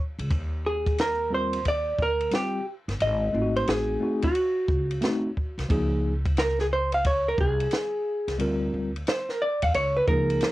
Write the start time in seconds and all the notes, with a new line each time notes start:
0.19 C#2, ride
0.31 D#2, kick, ride
0.66 G#4
0.86 kick, ride
0.98 A#4, snare, hi-hat pedal, ride
1.30 G3 C4 F4 A#4
1.34 C5
1.53 ride
1.65 D5, kick, ride
1.99 D2 A#4, kick
2.21 ride
2.31 G3 C4 F4 G4, snare, hi-hat pedal, ride
2.88 G1, snare, ride
3.00 G#1 D#5, ride
3.33 G#1 A3 C4 D#4 F4
3.42 F#4
3.56 C5, ride
3.67 A1 G#4, snare, hi-hat pedal, ride
4.00 A3 C4 D#4 F#4
4.22 F#4, kick, ride
4.35 ride
4.68 C#2, kick
4.91 ride
5.01 A3 C4 D#4 F#4, snare, hi-hat pedal, ride
5.37 kick
5.58 C2, snare, ride
5.69 C#2 F3 A#3 D#4 G#4, kick, ride
6.26 kick, ride
6.37 A#4, snare, hi-hat pedal, ride
6.59 G#4, snare
6.73 C5
6.92 F5, ride
7.04 C#5, kick, ride
7.28 A#4
7.38 C2 G#4, kick
7.60 ride
7.71 snare, hi-hat pedal, ride
8.28 C2, snare, ride
8.39 D2 G3 C4 F4 A#4, ride
8.74 D2
8.96 ride
9.07 C5, snare, hi-hat pedal, ride
9.29 A#4, snare
9.42 D5
9.62 E2 F5, kick, ride
9.74 C#2 C#5, ride
9.97 B4
10.07 C#2 F3 A#3 D#4 G#4 A#4, kick
10.30 ride
10.41 snare, hi-hat pedal, ride